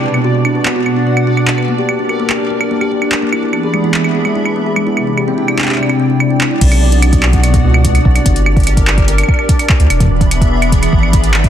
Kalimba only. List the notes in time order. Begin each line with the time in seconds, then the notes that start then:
0.04 B4
0.14 B3
0.24 F#4
0.35 F#4
0.45 D4
0.55 B4
0.66 B3
0.76 F#4
0.86 F#4
0.96 D4
1.07 B4
1.17 B3
1.27 F#4
1.37 F#4
1.48 D4
1.58 B4
1.68 A#3
1.79 G4
1.89 G4
1.99 D4
2.09 A#4
2.20 A#3
2.30 G4
2.40 G4
2.50 D4
2.61 A#4
2.71 A#3
2.81 G4
2.92 G4
3.02 D4
3.12 A#4
3.22 A#3
3.33 E4
3.43 E4
3.53 B3
3.63 G#4
3.74 G#3
3.84 E4
3.94 E4
4.04 B3
4.15 G#4
4.25 G#3
4.36 E4
4.46 E4
4.56 B3
4.66 G#4
4.77 G#3
4.87 E4
4.97 E4
5.07 D4
5.18 G4
5.28 C4
5.38 E4
5.48 E4
5.59 D4
5.69 G4
5.79 C4
5.89 E4
6.00 C4
6.10 D4
6.30 D4
6.41 C4
6.51 E4